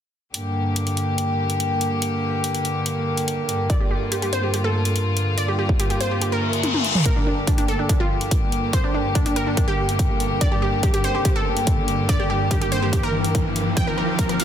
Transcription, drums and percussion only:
0.34 closed hi-hat
0.76 closed hi-hat
0.87 closed hi-hat
0.97 closed hi-hat
1.18 closed hi-hat
1.50 closed hi-hat
1.60 closed hi-hat
1.81 closed hi-hat
2.02 closed hi-hat
2.44 closed hi-hat
2.55 closed hi-hat
2.65 closed hi-hat
2.86 closed hi-hat
3.17 closed hi-hat
3.28 closed hi-hat
3.49 closed hi-hat
3.70 kick, closed hi-hat
4.12 closed hi-hat
4.22 closed hi-hat
4.33 closed hi-hat
4.54 closed hi-hat
4.85 closed hi-hat
4.96 closed hi-hat
5.17 closed hi-hat
5.38 closed hi-hat
5.69 kick
5.80 closed hi-hat
5.90 closed hi-hat
6.01 closed hi-hat
6.22 closed hi-hat
6.53 closed hi-hat
6.63 closed hi-hat, high tom
6.74 high tom
6.85 closed hi-hat
6.95 mid tom
7.05 kick, closed hi-hat
7.47 kick, closed hi-hat
7.58 closed hi-hat
7.68 closed hi-hat
7.89 kick, closed hi-hat
8.21 closed hi-hat
8.31 kick, closed hi-hat
8.52 closed hi-hat
8.73 kick, closed hi-hat
9.15 kick, closed hi-hat
9.26 closed hi-hat
9.36 closed hi-hat
9.57 kick, closed hi-hat
9.89 closed hi-hat
9.99 kick, closed hi-hat
10.20 closed hi-hat
10.41 kick, closed hi-hat
10.83 kick, closed hi-hat
10.94 closed hi-hat
11.04 closed hi-hat
11.25 kick, closed hi-hat
11.57 closed hi-hat
11.67 kick, closed hi-hat
11.88 closed hi-hat
12.09 kick, closed hi-hat
12.51 kick, closed hi-hat
12.62 closed hi-hat
12.72 closed hi-hat
12.93 kick, closed hi-hat
13.24 closed hi-hat
13.35 kick, closed hi-hat
13.56 closed hi-hat
13.77 kick, closed hi-hat
14.19 kick, closed hi-hat
14.29 closed hi-hat
14.40 open hi-hat

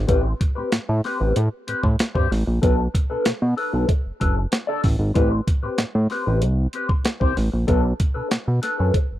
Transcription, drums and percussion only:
0.09 kick, closed hi-hat
0.41 kick, closed hi-hat
0.72 snare, closed hi-hat
1.04 snare, open hi-hat
1.36 closed hi-hat
1.68 closed hi-hat
1.83 kick
1.99 snare, closed hi-hat
2.15 kick
2.32 snare, open hi-hat
2.63 kick, closed hi-hat
2.95 kick, closed hi-hat
3.25 snare, closed hi-hat
3.58 open hi-hat
3.89 kick, closed hi-hat
4.21 kick, closed hi-hat
4.52 snare, closed hi-hat
4.84 kick, snare, open hi-hat
5.15 kick, closed hi-hat
5.47 kick, closed hi-hat
5.78 snare, closed hi-hat
6.10 snare, open hi-hat
6.42 closed hi-hat
6.73 closed hi-hat
6.89 kick
7.05 snare, closed hi-hat
7.21 kick
7.37 snare, open hi-hat
7.68 kick, closed hi-hat
8.00 kick, closed hi-hat
8.31 snare, closed hi-hat
8.63 snare, closed hi-hat
8.94 kick, closed hi-hat

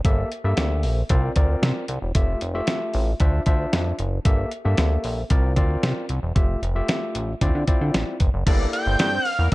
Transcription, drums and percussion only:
0.05 kick, closed hi-hat
0.32 closed hi-hat
0.57 snare, closed hi-hat
0.83 open hi-hat
1.09 kick, closed hi-hat
1.36 kick, closed hi-hat
1.63 snare, closed hi-hat
1.88 closed hi-hat
2.15 kick, closed hi-hat
2.41 closed hi-hat
2.67 snare, closed hi-hat
2.94 open hi-hat
3.20 kick, closed hi-hat
3.46 kick, closed hi-hat
3.73 snare, closed hi-hat
3.99 closed hi-hat
4.25 kick, closed hi-hat
4.51 closed hi-hat
4.77 snare, closed hi-hat
5.04 open hi-hat
5.30 kick, closed hi-hat
5.56 kick, closed hi-hat
5.83 snare, closed hi-hat
6.09 closed hi-hat
6.36 kick, closed hi-hat
6.63 closed hi-hat
6.88 snare, closed hi-hat
7.15 closed hi-hat
7.41 kick, closed hi-hat
7.67 kick, closed hi-hat
7.94 snare, closed hi-hat
8.20 kick, closed hi-hat
8.47 kick, closed hi-hat, crash
8.73 closed hi-hat
8.99 snare, closed hi-hat
9.25 open hi-hat

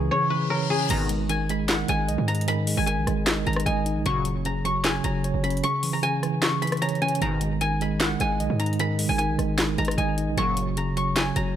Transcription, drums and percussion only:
0.90 closed hi-hat, crash
1.09 closed hi-hat
1.29 closed hi-hat
1.49 closed hi-hat
1.69 snare, clap, closed hi-hat
1.88 closed hi-hat
2.09 closed hi-hat
2.28 closed hi-hat
2.35 closed hi-hat
2.41 closed hi-hat
2.48 closed hi-hat
2.67 open hi-hat
2.87 closed hi-hat
3.07 cross-stick, closed hi-hat
3.26 snare, clap, closed hi-hat
3.47 closed hi-hat
3.53 cross-stick, closed hi-hat
3.60 closed hi-hat
3.66 closed hi-hat
3.86 closed hi-hat
4.06 closed hi-hat
4.25 closed hi-hat
4.45 closed hi-hat
4.65 closed hi-hat
4.84 snare, clap, closed hi-hat
5.04 closed hi-hat
5.24 closed hi-hat
5.44 closed hi-hat
5.50 closed hi-hat
5.57 closed hi-hat
5.64 closed hi-hat
5.83 open hi-hat
6.03 closed hi-hat
6.23 cross-stick, closed hi-hat
6.42 snare, clap, closed hi-hat
6.62 closed hi-hat
6.67 closed hi-hat
6.72 cross-stick, closed hi-hat
6.77 closed hi-hat
6.82 closed hi-hat
6.89 closed hi-hat
6.95 closed hi-hat
7.02 closed hi-hat
7.08 closed hi-hat
7.15 closed hi-hat
7.22 closed hi-hat
7.41 closed hi-hat
7.61 closed hi-hat
7.81 closed hi-hat
8.00 snare, clap, closed hi-hat
8.20 closed hi-hat
8.40 closed hi-hat
8.60 closed hi-hat
8.66 closed hi-hat
8.73 closed hi-hat
8.79 closed hi-hat
8.99 open hi-hat
9.19 closed hi-hat
9.39 cross-stick, closed hi-hat
9.58 snare, clap, closed hi-hat
9.78 closed hi-hat
9.85 cross-stick, closed hi-hat
9.91 closed hi-hat
9.98 closed hi-hat
10.18 closed hi-hat
10.38 closed hi-hat
10.57 closed hi-hat
10.77 closed hi-hat
10.97 closed hi-hat
11.16 snare, clap, closed hi-hat
11.36 closed hi-hat

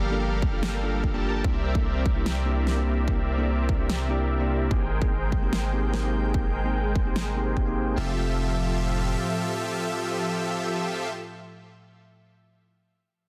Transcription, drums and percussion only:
0.42 kick
0.63 snare
1.04 kick
1.44 kick
1.75 kick
2.06 kick
2.26 snare
2.67 snare
3.08 kick
3.69 kick
3.90 snare
4.71 kick
5.02 kick
5.32 kick
5.53 snare
5.94 snare
6.34 kick
6.96 kick
7.16 snare
7.57 kick

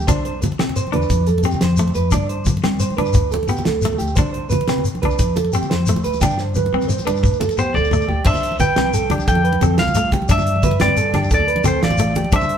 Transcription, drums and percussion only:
0.00 shekere
0.08 kick, closed hi-hat, muted conga, low conga, shekere
0.25 closed hi-hat
0.42 closed hi-hat, high conga, low conga, shekere
0.52 muted conga
0.59 snare, closed hi-hat
0.69 low conga
0.76 closed hi-hat, shekere
0.87 high conga, low conga
0.93 closed hi-hat, low conga
1.02 low conga, shekere
1.10 kick, closed hi-hat, low conga, shekere
1.21 low conga
1.27 closed hi-hat, high conga, shekere
1.38 muted conga, low conga
1.43 closed hi-hat, shekere
1.51 low conga, shekere
1.61 snare, closed hi-hat, high conga
1.77 closed hi-hat, muted conga, shekere
1.88 low conga
1.94 closed hi-hat, shekere
2.11 kick, closed hi-hat, muted conga, low conga, shekere
2.29 closed hi-hat
2.45 kick, closed hi-hat, high conga, low conga, shekere
2.57 muted conga
2.64 snare, closed hi-hat
2.75 low conga
2.80 closed hi-hat, shekere
2.90 high conga, low conga
2.98 closed hi-hat, muted conga, low conga
3.06 low conga, shekere
3.13 kick, closed hi-hat, low conga, shekere
3.26 low conga
3.31 closed hi-hat, high conga, low conga, shekere
3.43 muted conga
3.48 closed hi-hat, shekere
3.56 low conga, shekere
3.65 snare, closed hi-hat, high conga
3.82 snare, closed hi-hat, muted conga, shekere
3.93 low conga
3.99 closed hi-hat, shekere
4.07 shekere
4.16 kick, closed hi-hat, muted conga, low conga, shekere
4.34 closed hi-hat
4.50 closed hi-hat, high conga, low conga, shekere
4.61 muted conga
4.68 snare, closed hi-hat
4.78 low conga
4.84 closed hi-hat, shekere
4.95 high conga, low conga
5.03 closed hi-hat, muted conga, low conga
5.10 low conga, shekere
5.19 kick, closed hi-hat, low conga, shekere
5.28 low conga
5.36 closed hi-hat, high conga, low conga, shekere
5.45 muted conga, low conga
5.53 closed hi-hat, shekere
5.62 low conga, shekere
5.71 snare, closed hi-hat, high conga
5.86 closed hi-hat, muted conga, shekere
5.96 low conga
6.04 closed hi-hat, shekere
6.13 high conga, shekere
6.21 kick, snare, muted conga, low conga, shekere
6.30 low conga, shekere
6.38 snare, shekere
6.49 low conga
6.55 high conga, low conga, shekere
6.66 muted conga
6.73 high tom, low conga
6.81 low conga, shekere
6.89 high tom, shekere
6.98 high conga, low conga, shekere
7.07 muted conga, low conga, shekere
7.16 shekere
7.23 kick, mid tom, shekere
7.33 low conga, shekere
7.40 mid tom, high conga, low conga, shekere
7.49 muted conga, low conga, shekere
7.58 high conga, shekere
7.74 floor tom, high conga, shekere
7.84 shekere
7.91 floor tom, low conga, shekere
8.01 shekere
8.09 floor tom, low conga
8.25 kick, crash, muted conga, shekere
8.34 low conga, shekere
8.43 closed hi-hat, low conga
8.52 high conga
8.60 kick, closed hi-hat, low conga, shekere
8.76 snare, closed hi-hat, low conga
8.84 high conga
8.93 closed hi-hat, shekere
9.10 closed hi-hat, muted conga, low conga
9.18 high conga, shekere
9.27 kick, closed hi-hat, shekere
9.35 low conga
9.45 closed hi-hat
9.53 muted conga, high conga
9.61 closed hi-hat, low conga, shekere
9.78 snare, closed hi-hat
9.87 high conga, low conga, shekere
9.95 closed hi-hat, muted conga, low conga, shekere
10.12 kick, closed hi-hat, low conga
10.22 high conga, low conga
10.29 kick, closed hi-hat, muted conga, shekere
10.38 low conga, shekere
10.47 closed hi-hat, low conga
10.56 high conga
10.63 kick, closed hi-hat, low conga, shekere
10.71 muted conga
10.80 snare, closed hi-hat, low conga
10.88 high conga, low conga
10.97 closed hi-hat, shekere
11.14 snare, closed hi-hat, muted conga, low conga
11.23 high conga, shekere
11.30 kick, closed hi-hat, shekere
11.40 low conga
11.48 closed hi-hat
11.56 muted conga, high conga
11.64 closed hi-hat, low conga, shekere
11.83 snare, closed hi-hat
11.90 high conga, low conga, shekere
11.98 closed hi-hat, muted conga, low conga, shekere
12.15 closed hi-hat, low conga
12.24 high conga, low conga
12.31 kick, closed hi-hat, muted conga, shekere
12.41 low conga, shekere
12.49 closed hi-hat, low conga

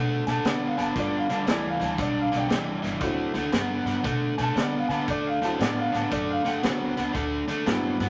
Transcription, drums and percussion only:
0.27 snare, closed hi-hat
0.45 snare, closed hi-hat
0.78 snare, closed hi-hat
0.96 kick, closed hi-hat
1.30 snare, closed hi-hat
1.47 snare, closed hi-hat
1.81 snare, closed hi-hat
1.98 kick, closed hi-hat
2.33 snare, closed hi-hat
2.50 snare, closed hi-hat
2.84 snare, closed hi-hat
3.00 kick, closed hi-hat
3.35 snare, closed hi-hat
3.52 snare, closed hi-hat
3.87 snare, closed hi-hat
4.04 kick, closed hi-hat
4.38 snare, closed hi-hat
4.57 snare, closed hi-hat
4.90 snare, closed hi-hat
5.08 kick, closed hi-hat
5.43 snare, closed hi-hat
5.60 snare, closed hi-hat
5.94 snare, closed hi-hat
6.11 kick, closed hi-hat
6.46 snare, closed hi-hat
6.63 snare, closed hi-hat
6.97 snare, closed hi-hat
7.15 kick, closed hi-hat
7.48 snare, closed hi-hat
7.66 snare, closed hi-hat
8.00 snare, closed hi-hat

